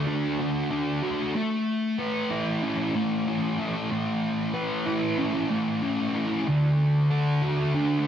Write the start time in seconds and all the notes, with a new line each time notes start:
Already playing: D3 A3 F#4 A4
0.07 D4
0.39 A3
0.71 D4
1.02 F#4
1.35 A3
1.98 B4
2.30 E4
2.62 C#4
2.95 A3
3.27 C#4
3.59 E4
3.91 A3
4.53 B4
4.85 E4
5.18 C#4
5.50 A3
5.82 C#4
6.15 E4
6.47 D3
7.10 A4
7.42 F#4
7.75 D4